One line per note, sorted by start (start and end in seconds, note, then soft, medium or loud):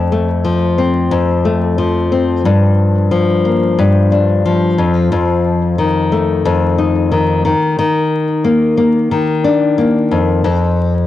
0.00 1.10 F2 medium
0.00 0.12 A3 medium
0.12 1.44 A3 medium
0.44 1.78 F3 medium
0.78 2.11 C4 medium
1.11 2.45 F2 medium
1.45 2.52 A3 medium
1.78 3.11 F3 medium
2.12 2.52 C4 medium
2.45 3.77 G2 medium
3.11 4.45 F3 medium
3.45 4.85 A#3 medium
3.79 4.78 G2 medium
4.12 4.85 D4 medium
4.46 5.78 F3 medium
4.78 5.11 F2 medium
5.12 6.44 F2 medium
5.78 7.11 D#3 medium
6.12 7.52 A3 medium
6.45 7.52 F2 medium
6.78 9.44 D#4 medium
7.11 7.44 D#3 medium
7.45 7.78 D#3 medium
7.79 9.11 D#3 medium
8.44 8.76 A#3 medium
8.77 9.77 A#3 medium
9.11 10.47 D#3 medium
9.44 10.18 D4 medium
9.78 10.18 A#3 medium
10.11 10.43 F2 medium
10.44 11.07 F2 medium